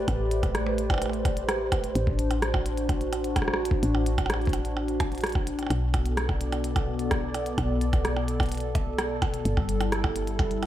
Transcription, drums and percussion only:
0.08 kick, closed hi-hat, percussion blips
0.31 closed hi-hat
0.43 kick, closed hi-hat, percussion blips
0.55 cross-stick, closed hi-hat
0.67 percussion blips
0.78 closed hi-hat
0.90 kick, closed hi-hat, percussion blips
0.94 percussion blips
0.98 closed hi-hat, percussion blips
1.02 percussion blips
1.06 percussion blips
1.09 closed hi-hat, percussion blips
1.25 kick, closed hi-hat, percussion blips
1.37 closed hi-hat
1.49 cross-stick, closed hi-hat, percussion blips
1.72 kick, closed hi-hat, percussion blips
1.84 closed hi-hat
1.95 closed hi-hat
2.07 kick
2.19 closed hi-hat
2.31 closed hi-hat, percussion blips
2.42 cross-stick, closed hi-hat
2.54 kick, percussion blips
2.66 closed hi-hat
2.77 closed hi-hat
2.89 kick, closed hi-hat, percussion blips
3.01 closed hi-hat
3.13 closed hi-hat, percussion blips
3.24 closed hi-hat
3.36 kick, cross-stick, closed hi-hat, percussion blips
3.42 cross-stick
3.48 cross-stick
3.54 cross-stick
3.65 closed hi-hat
3.71 kick
3.83 closed hi-hat
3.95 percussion blips
4.06 closed hi-hat
4.18 kick, closed hi-hat, percussion blips
4.26 cross-stick, closed hi-hat, percussion blips
4.34 percussion blips
4.41 closed hi-hat
4.45 kick, closed hi-hat
4.49 closed hi-hat
4.53 closed hi-hat, percussion blips
4.65 closed hi-hat
4.77 percussion blips
4.88 closed hi-hat
5.00 kick, closed hi-hat, percussion blips
5.12 closed hi-hat
5.15 closed hi-hat
5.18 closed hi-hat
5.21 cross-stick, closed hi-hat
5.24 closed hi-hat
5.26 closed hi-hat
5.29 closed hi-hat
5.32 kick, closed hi-hat, percussion blips
5.47 closed hi-hat
5.59 closed hi-hat, percussion blips
5.63 percussion blips
5.67 closed hi-hat, percussion blips
5.70 percussion blips
5.94 kick, closed hi-hat, percussion blips
6.06 closed hi-hat
6.17 cross-stick, closed hi-hat
6.29 kick, percussion blips
6.41 closed hi-hat
6.52 closed hi-hat, percussion blips
6.64 closed hi-hat
6.76 kick, closed hi-hat, percussion blips
6.99 closed hi-hat
7.11 kick, cross-stick, closed hi-hat, percussion blips
7.34 closed hi-hat, percussion blips
7.46 closed hi-hat
7.58 kick, closed hi-hat, percussion blips
7.81 closed hi-hat
7.93 kick, closed hi-hat, percussion blips
8.05 cross-stick, closed hi-hat
8.16 percussion blips
8.28 closed hi-hat
8.40 kick, closed hi-hat, percussion blips
8.43 closed hi-hat
8.46 closed hi-hat
8.49 closed hi-hat
8.52 closed hi-hat
8.55 closed hi-hat
8.57 closed hi-hat
8.60 closed hi-hat
8.75 kick, closed hi-hat, percussion blips
8.98 cross-stick, closed hi-hat, percussion blips
9.22 kick, closed hi-hat, percussion blips
9.34 closed hi-hat
9.45 closed hi-hat
9.57 kick, percussion blips
9.69 closed hi-hat
9.81 closed hi-hat, percussion blips
9.92 cross-stick, closed hi-hat
10.04 kick, percussion blips
10.16 closed hi-hat
10.27 closed hi-hat
10.39 kick, closed hi-hat, percussion blips
10.51 closed hi-hat
10.63 closed hi-hat, percussion blips

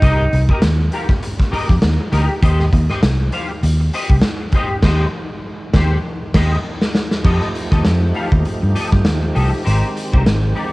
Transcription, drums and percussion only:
0.02 kick, closed hi-hat
0.33 closed hi-hat
0.49 kick
0.62 snare, closed hi-hat
0.92 closed hi-hat
1.09 kick, snare
1.23 closed hi-hat
1.40 kick, snare
1.53 open hi-hat
1.69 kick, snare
1.82 snare, closed hi-hat
2.12 snare, closed hi-hat
2.42 kick, closed hi-hat
2.60 snare
2.73 kick, closed hi-hat
2.90 snare
3.03 snare, closed hi-hat
3.32 closed hi-hat
3.63 closed hi-hat
3.93 open hi-hat
4.10 kick
4.22 snare, closed hi-hat
4.52 kick, closed hi-hat
4.83 kick, snare, crash
5.73 kick, snare
6.34 kick, snare, crash
6.81 snare
6.95 snare
7.11 snare
7.24 kick, crash
7.41 snare
7.55 closed hi-hat
7.72 kick, snare
7.85 snare, closed hi-hat
8.14 open hi-hat
8.32 kick
8.45 closed hi-hat
8.76 closed hi-hat
8.92 kick, snare
9.05 snare, closed hi-hat
9.36 open hi-hat
9.66 closed hi-hat
9.97 closed hi-hat
10.13 kick
10.26 snare, closed hi-hat
10.56 open hi-hat

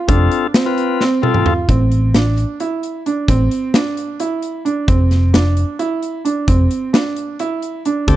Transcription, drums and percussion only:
0.08 kick, closed hi-hat
0.31 closed hi-hat
0.54 snare, closed hi-hat
0.78 closed hi-hat
1.01 snare
1.23 high tom
1.34 mid tom
1.46 mid tom
1.69 kick, closed hi-hat
1.92 closed hi-hat
2.14 snare, closed hi-hat
2.38 closed hi-hat
2.60 closed hi-hat
2.83 closed hi-hat
3.06 closed hi-hat
3.28 kick, closed hi-hat
3.51 closed hi-hat
3.74 snare, closed hi-hat
3.97 closed hi-hat
4.20 closed hi-hat
4.42 closed hi-hat
4.66 closed hi-hat
4.88 kick, closed hi-hat
5.11 snare, closed hi-hat
5.34 snare, closed hi-hat
5.57 closed hi-hat
5.79 closed hi-hat
6.02 closed hi-hat
6.25 closed hi-hat
6.48 kick, closed hi-hat
6.71 closed hi-hat
6.94 snare, closed hi-hat
7.16 closed hi-hat
7.39 closed hi-hat
7.62 closed hi-hat
7.85 closed hi-hat
8.08 kick, closed hi-hat

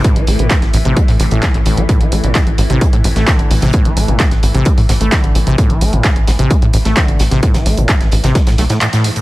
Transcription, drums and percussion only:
0.04 kick, closed hi-hat
0.16 closed hi-hat
0.27 closed hi-hat, open hi-hat
0.39 closed hi-hat
0.50 kick, snare, clap, closed hi-hat
0.62 snare, closed hi-hat
0.73 closed hi-hat, open hi-hat
0.85 closed hi-hat
0.97 kick, closed hi-hat
1.08 open hi-hat
1.19 closed hi-hat, open hi-hat
1.31 closed hi-hat
1.42 kick, snare, clap, closed hi-hat
1.54 closed hi-hat
1.66 closed hi-hat, open hi-hat
1.77 closed hi-hat
1.89 kick, closed hi-hat
2.01 closed hi-hat
2.12 closed hi-hat, open hi-hat
2.24 closed hi-hat
2.35 kick, snare, clap, closed hi-hat
2.47 closed hi-hat
2.58 closed hi-hat, open hi-hat
2.70 closed hi-hat
2.81 kick, closed hi-hat
2.93 closed hi-hat
3.04 closed hi-hat, open hi-hat
3.16 snare, closed hi-hat
3.27 kick, snare, clap, closed hi-hat
3.39 closed hi-hat
3.51 open hi-hat
3.61 snare, closed hi-hat
3.73 kick, closed hi-hat
3.85 closed hi-hat
3.97 closed hi-hat, open hi-hat
4.08 closed hi-hat
4.20 kick, snare, clap, closed hi-hat
4.31 snare, closed hi-hat
4.43 closed hi-hat, open hi-hat
4.55 closed hi-hat
4.65 kick, closed hi-hat
4.78 open hi-hat
4.89 snare, closed hi-hat, open hi-hat
5.01 closed hi-hat
5.12 kick, snare, clap, closed hi-hat
5.24 closed hi-hat
5.35 closed hi-hat, open hi-hat
5.47 closed hi-hat
5.58 kick, closed hi-hat
5.70 closed hi-hat
5.81 closed hi-hat, open hi-hat
5.93 closed hi-hat
6.04 kick, snare, clap, closed hi-hat
6.16 closed hi-hat
6.27 snare, closed hi-hat, open hi-hat
6.39 closed hi-hat
6.50 kick, closed hi-hat
6.62 closed hi-hat
6.73 closed hi-hat, open hi-hat
6.85 snare, closed hi-hat
6.97 kick, snare, clap, closed hi-hat
7.08 closed hi-hat
7.19 snare, closed hi-hat, open hi-hat
7.31 snare, closed hi-hat
7.43 kick, closed hi-hat
7.54 snare, closed hi-hat
7.66 snare, open hi-hat
7.77 closed hi-hat
7.88 kick, snare, clap, closed hi-hat
8.01 snare, closed hi-hat
8.12 closed hi-hat, open hi-hat
8.24 snare, closed hi-hat
8.35 kick, snare, closed hi-hat
8.47 snare, closed hi-hat, open hi-hat
8.58 snare, closed hi-hat, open hi-hat
8.69 snare, closed hi-hat
8.81 snare, clap, closed hi-hat
8.93 snare, closed hi-hat
9.04 snare, open hi-hat
9.16 closed hi-hat

